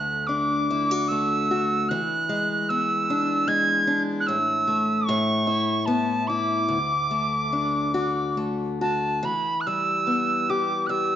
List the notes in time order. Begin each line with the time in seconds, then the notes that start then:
Already playing: D2 A3 F#6
0.27 D4 D6
0.70 E4
0.91 F#4
1.08 A3 E6
1.51 F#4
1.89 E3 F#6
2.29 G#3
2.69 B3 E6
3.10 D4
3.48 G#3 G#6
3.87 D4
4.20 F#6
4.26 A2 E6
4.67 A3
5.07 A2 C#6
5.47 E4
5.86 B3 A5
6.27 E4 D6
6.69 D2
7.11 A3
7.53 D4
7.94 F#4
8.37 A3
8.81 F#4 A5
9.23 E3 B5
9.60 F#6
9.66 G3 E6
10.07 B3
10.50 G4 D6
10.86 G3 E6 F#6